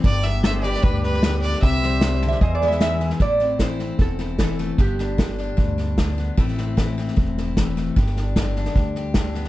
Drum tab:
HH |----p-------p---|----p-------p---|----p-------p---|----p-------p---|
SD |o-o-o-ooo-ooo-oo|o-o-o-ooo-ooo-oo|o-o-o-o-o-o-o-o-|o-o-o-o-o-o-o-o-|
BD |o-------o-------|o-------o-------|o---o---o---o---|o---o---o---o---|

HH |----p-------p---|----p-------p---|
SD |ooo-o-ooo-o-o-o-|ooo-o-ooo-o-o-oo|
BD |o---o---o---o---|o---o---o---o---|